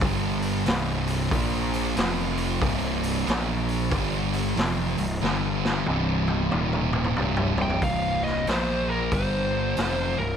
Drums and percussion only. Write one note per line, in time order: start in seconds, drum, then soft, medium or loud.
0.01 kick loud
0.01 open hi-hat medium
0.42 open hi-hat medium
0.66 snare loud
0.66 open hi-hat medium
1.07 open hi-hat medium
1.31 kick loud
1.31 open hi-hat medium
1.74 open hi-hat medium
1.97 snare loud
1.97 open hi-hat medium
2.37 open hi-hat medium
2.62 kick loud
2.62 open hi-hat medium
3.03 open hi-hat medium
3.28 snare loud
3.28 open hi-hat medium
3.69 open hi-hat medium
3.92 kick loud
3.92 open hi-hat medium
4.33 open hi-hat medium
4.57 snare loud
4.57 open hi-hat medium
4.98 open hi-hat medium
5.24 snare medium
5.65 snare medium
5.86 high tom medium
6.28 high tom medium
6.52 mid tom medium
6.73 mid tom medium
6.93 mid tom medium
7.04 mid tom medium
7.17 mid tom loud
7.37 floor tom loud
7.58 floor tom loud
7.70 floor tom medium
7.82 kick loud
7.82 open hi-hat medium
8.26 snare soft
8.47 snare loud
8.47 open hi-hat soft
9.12 kick loud
9.12 open hi-hat medium
9.77 snare loud
9.77 open hi-hat medium